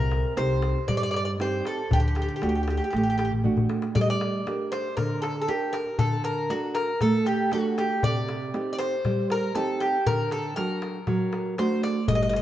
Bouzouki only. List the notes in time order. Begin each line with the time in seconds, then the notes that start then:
Already playing: A#4
0.37 C5
0.88 D5
0.97 D5
1.03 D5
1.11 D5
1.16 D5
1.25 D5
1.41 C5
1.67 A4
1.93 G4
2.00 G4
2.08 G4
2.15 G4
2.22 G4
2.29 G4
2.36 G4
2.43 G4
2.49 G4
2.55 G4
2.63 G4
2.70 G4
2.77 G4
2.84 G4
2.90 G4
2.97 G4
3.03 G4
3.10 G4
3.18 G4
3.25 G4
3.95 D5
4.01 D#5
4.10 D5
4.72 C5
4.97 A#4
5.22 A4
5.42 A4
5.48 G4
5.73 A#4
5.99 A4
6.24 A#4
6.50 F#4
6.75 A#4
7.02 A4
7.27 G4
7.53 F#4
7.78 G4
8.04 D5
8.73 D5
8.79 C5
9.32 A#4
9.55 A4
9.80 G4
10.07 A#4
10.32 A4
10.56 A#4
11.59 C5
11.84 D5
12.08 D#5
12.15 D#5
12.23 D#5
12.29 D#5
12.36 D#5